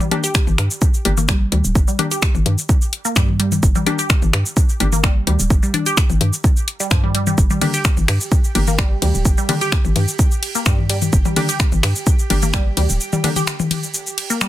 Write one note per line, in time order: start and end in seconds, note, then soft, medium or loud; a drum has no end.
0.00 0.04 G3 medium
0.00 mid tom medium
0.00 shaker soft
0.11 0.23 A#3 medium
0.11 0.18 D4 medium
0.11 0.23 D4 medium
0.11 0.23 G4 loud
0.11 closed hi-hat medium
0.11 mid tom medium
0.24 0.28 G4 loud
0.24 closed hi-hat soft
0.24 shaker soft
0.35 finger snap loud
0.35 kick loud
0.35 shaker medium
0.47 0.57 G1 medium
0.47 mid tom loud
0.47 shaker soft
0.58 0.69 G2 medium
0.58 finger snap medium
0.58 closed hi-hat medium
0.71 shaker soft
0.82 kick loud
0.82 shaker medium
0.94 shaker soft
1.05 1.49 G1 loud
1.05 1.12 A#3 medium
1.05 1.12 D4 medium
1.05 1.12 G4 medium
1.05 closed hi-hat medium
1.05 high tom medium
1.17 1.21 A#3 medium
1.17 high tom medium
1.17 shaker soft
1.28 1.31 G3 loud
1.28 finger snap loud
1.28 kick loud
1.28 shaker medium
1.52 1.63 D2 loud
1.52 1.55 G3 medium
1.52 closed hi-hat loud
1.52 high tom medium
1.64 1.74 D1 medium
1.64 shaker soft
1.75 1.86 G1 loud
1.75 kick loud
1.75 shaker medium
1.88 1.92 G3 medium
1.88 shaker soft
1.99 2.06 A#3 medium
1.99 2.05 D4 medium
1.99 2.06 D4 medium
1.99 2.06 G4 medium
1.99 closed hi-hat loud
1.99 mid tom medium
2.11 2.15 G4 loud
2.11 closed hi-hat soft
2.11 shaker soft
2.22 finger snap loud
2.22 kick loud
2.22 shaker medium
2.35 2.44 G1 medium
2.35 mid tom loud
2.35 shaker soft
2.46 2.56 G2 medium
2.46 closed hi-hat loud
2.46 high tom medium
2.58 shaker soft
2.69 kick loud
2.69 shaker medium
2.82 shaker soft
2.93 closed hi-hat medium
3.05 3.09 A#3 medium
3.05 shaker soft
3.16 3.60 G2 medium
3.16 3.19 G3 loud
3.16 finger snap loud
3.16 kick loud
3.16 shaker medium
3.29 high tom medium
3.40 3.42 G3 medium
3.40 closed hi-hat loud
3.52 high tom medium
3.52 shaker soft
3.63 3.73 G1 loud
3.63 kick loud
3.63 shaker medium
3.75 3.79 G3 medium
3.75 mid tom medium
3.75 shaker soft
3.86 3.98 A#3 medium
3.86 3.98 D4 medium
3.86 3.93 D4 medium
3.86 3.98 G4 loud
3.86 closed hi-hat loud
3.86 mid tom medium
3.99 4.03 G4 loud
3.99 closed hi-hat soft
3.99 shaker soft
4.10 finger snap loud
4.10 kick loud
4.10 shaker medium
4.22 4.32 G1 medium
4.22 mid tom loud
4.22 shaker soft
4.33 4.44 G2 medium
4.33 finger snap medium
4.33 closed hi-hat loud
4.46 shaker soft
4.57 kick loud
4.57 shaker soft
4.69 shaker soft
4.80 5.24 G1 loud
4.80 4.87 A#3 medium
4.80 4.87 D4 medium
4.80 4.87 G4 medium
4.80 closed hi-hat loud
4.80 high tom medium
4.93 4.96 A#3 medium
4.93 high tom medium
4.93 shaker soft
5.04 5.06 G3 loud
5.04 finger snap medium
5.04 kick loud
5.04 shaker medium
5.27 5.38 D2 loud
5.27 5.30 G3 medium
5.27 closed hi-hat loud
5.27 high tom medium
5.39 5.49 D1 medium
5.39 shaker soft
5.50 5.61 G1 loud
5.50 kick loud
5.50 shaker medium
5.63 5.67 G3 medium
5.63 shaker soft
5.74 5.80 D4 medium
5.74 closed hi-hat medium
5.74 mid tom medium
5.86 5.90 G4 loud
5.86 closed hi-hat soft
5.86 shaker soft
5.97 finger snap medium
5.97 kick loud
5.97 shaker medium
6.10 6.19 G1 medium
6.10 mid tom loud
6.10 shaker soft
6.21 6.31 G2 medium
6.21 closed hi-hat loud
6.21 high tom medium
6.33 shaker soft
6.44 kick loud
6.44 shaker soft
6.57 shaker soft
6.68 closed hi-hat medium
6.80 6.82 G3 medium
6.80 shaker soft
6.91 7.35 G2 medium
6.91 6.94 F3 medium
6.91 finger snap medium
6.91 kick loud
6.91 shaker medium
7.03 7.06 G3 medium
7.03 high tom medium
7.15 7.17 G3 medium
7.15 closed hi-hat loud
7.27 7.29 G3 medium
7.27 high tom medium
7.27 shaker soft
7.38 7.48 G1 loud
7.38 14.48 G4 medium
7.38 14.48 G5 medium
7.38 kick loud
7.38 shaker medium
7.50 7.54 G3 medium
7.50 mid tom medium
7.50 shaker soft
7.61 7.68 D3 medium
7.61 7.73 A#3 medium
7.61 7.73 D4 medium
7.61 7.73 G4 loud
7.61 closed hi-hat medium
7.61 mid tom medium
7.61 ride medium
7.74 7.78 G4 loud
7.74 closed hi-hat soft
7.74 shaker soft
7.85 finger snap medium
7.85 kick loud
7.85 shaker medium
7.97 8.07 G1 medium
7.97 mid tom loud
7.97 shaker soft
8.08 8.19 G2 loud
8.08 finger snap medium
8.08 closed hi-hat medium
8.08 ride medium
8.21 shaker soft
8.32 kick loud
8.32 shaker medium
8.44 shaker soft
8.55 8.99 G1 loud
8.55 8.62 A#3 medium
8.55 8.62 D4 medium
8.55 8.62 G4 medium
8.55 closed hi-hat medium
8.55 high tom medium
8.55 ride medium
8.68 8.71 A#3 medium
8.68 high tom medium
8.68 shaker soft
8.78 8.81 G3 loud
8.78 finger snap medium
8.78 kick loud
8.78 shaker soft
9.02 9.13 D2 loud
9.02 9.05 G3 medium
9.02 closed hi-hat loud
9.02 high tom medium
9.02 ride medium
9.14 9.24 D1 medium
9.14 shaker soft
9.25 9.36 G1 medium
9.25 kick loud
9.25 shaker medium
9.38 9.42 G3 medium
9.38 shaker soft
9.49 9.55 D3 medium
9.49 9.56 A#3 medium
9.49 9.56 D4 medium
9.49 9.56 G4 medium
9.49 closed hi-hat medium
9.49 mid tom medium
9.49 ride medium
9.61 9.65 G4 loud
9.61 closed hi-hat soft
9.61 shaker soft
9.72 finger snap medium
9.72 kick loud
9.72 shaker medium
9.85 9.94 G1 medium
9.85 mid tom medium
9.85 shaker soft
9.96 10.06 G2 loud
9.96 closed hi-hat medium
9.96 high tom medium
9.96 ride medium
10.08 shaker soft
10.19 kick loud
10.19 shaker medium
10.32 shaker soft
10.43 closed hi-hat medium
10.43 ride medium
10.55 10.59 A#3 medium
10.55 shaker soft
10.66 11.10 G2 medium
10.66 10.69 G3 loud
10.66 finger snap medium
10.66 kick loud
10.66 shaker medium
10.78 high tom medium
10.90 10.92 G3 medium
10.90 closed hi-hat loud
10.90 ride medium
11.02 high tom medium
11.02 shaker soft
11.13 11.23 G1 loud
11.13 kick loud
11.13 shaker medium
11.25 11.29 G3 medium
11.25 mid tom medium
11.25 shaker soft
11.36 11.43 D3 medium
11.36 11.48 A#3 medium
11.36 11.48 D4 medium
11.36 11.48 G4 loud
11.36 closed hi-hat medium
11.36 mid tom medium
11.36 ride medium
11.49 11.53 G4 loud
11.49 closed hi-hat soft
11.49 shaker soft
11.60 finger snap medium
11.60 kick loud
11.60 shaker medium
11.72 11.82 G1 medium
11.72 mid tom loud
11.72 shaker soft
11.83 11.94 G2 medium
11.83 finger snap medium
11.83 closed hi-hat medium
11.83 ride medium
11.96 shaker soft
12.07 kick loud
12.07 shaker medium
12.19 shaker soft
12.30 12.74 G1 loud
12.30 12.37 A#3 medium
12.30 12.37 D4 medium
12.30 12.37 G4 medium
12.30 closed hi-hat medium
12.30 high tom medium
12.30 ride medium
12.43 12.46 A#3 medium
12.43 high tom medium
12.43 shaker soft
12.54 12.56 G3 loud
12.54 finger snap medium
12.54 kick loud
12.54 shaker medium
12.77 12.88 D2 loud
12.77 12.80 G3 medium
12.77 closed hi-hat medium
12.77 high tom soft
12.77 ride loud
12.89 12.99 D1 medium
12.89 shaker soft
13.01 shaker medium
13.13 13.17 G3 medium
13.13 mid tom medium
13.13 shaker soft
13.24 13.30 D3 medium
13.24 13.31 A#3 medium
13.24 13.31 D4 medium
13.24 13.31 G4 medium
13.24 closed hi-hat medium
13.24 mid tom medium
13.24 ride medium
13.36 13.40 G4 loud
13.36 closed hi-hat soft
13.36 high tom medium
13.36 shaker soft
13.47 finger snap loud
13.47 shaker medium
13.60 mid tom loud
13.60 shaker soft
13.71 closed hi-hat medium
13.71 high tom medium
13.71 ride medium
13.83 shaker soft
13.94 shaker medium
14.07 shaker soft
14.18 closed hi-hat medium
14.18 ride medium
14.30 14.34 A#3 medium
14.30 shaker soft
14.41 14.44 G3 loud
14.41 finger snap medium
14.41 shaker medium